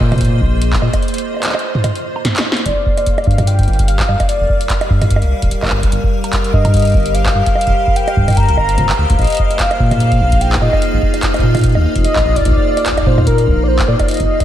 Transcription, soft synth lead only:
2.66 3.28 D5 medium
3.27 3.49 F5 loud
3.47 3.87 G5 loud
3.88 4.26 F5 loud
4.29 4.86 D5 medium
6.53 7.16 D#5 medium
7.15 7.55 F5 medium
7.55 7.98 F5 loud
7.96 8.39 G5 loud
8.37 8.57 A#5 loud
8.58 8.95 A#5 loud
9.19 9.61 D#5 loud
9.60 10.00 F5 loud
10.01 10.43 F5 medium
10.41 10.63 G5 medium
10.62 11.02 D#5 medium
12.04 12.38 D#5 loud
12.36 13.08 D5 loud
13.07 13.26 C5 loud
13.27 13.46 A#4 medium
13.47 13.65 A#4 medium
13.63 13.69 D5 medium
13.68 13.90 C5 loud
13.88 14.10 D5 loud
14.09 14.45 D#5 loud

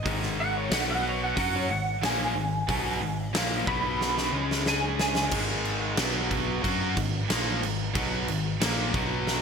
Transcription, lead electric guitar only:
0.40 0.55 F#5 loud
0.57 0.72 C#5 loud
0.73 0.88 F#5 medium
0.90 1.05 F#5 loud
1.09 1.22 C#5 medium
1.23 1.38 F#5 medium
1.39 1.54 F#5 loud
1.56 1.71 C#5 loud
1.71 2.02 F#5 medium
2.05 3.32 G#5 loud
3.68 4.63 B5 loud
4.68 4.99 G#5 loud
5.01 5.32 G#5 loud

